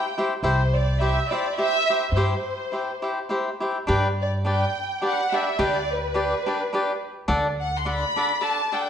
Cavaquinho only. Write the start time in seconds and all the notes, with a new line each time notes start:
0.18 E4 G4 C5 E5
0.43 E4 G4 C5 E5
1.00 E4 G4 C5 E5
1.31 E4 G4 C5 E5
1.58 E4 G4 C5 E5
1.89 E4 G4 C5 E5
2.16 E4 G4 C5 E5
2.72 E4 G4 C5 E5
3.02 E4 G4 C5 E5
3.29 E4 G4 C5 E5
3.60 E4 G4 C5 E5
3.87 D4 G4 B4 D5
4.45 D4 G4 B4 D5
5.01 D4 G4 B4 D5
5.32 D4 G4 B4 D5
5.59 D4 G4 B4 D5
6.14 D4 G4 B4 D5
6.46 D4 G4 B4 D5
6.73 D4 G4 B4 D5
7.28 D4 A4 D5 F#5
7.85 D4 A4 D5 F#5
8.16 D4 A4 D5 F#5
8.41 D4 A4 D5 F#5
8.72 D4 A4 D5 F#5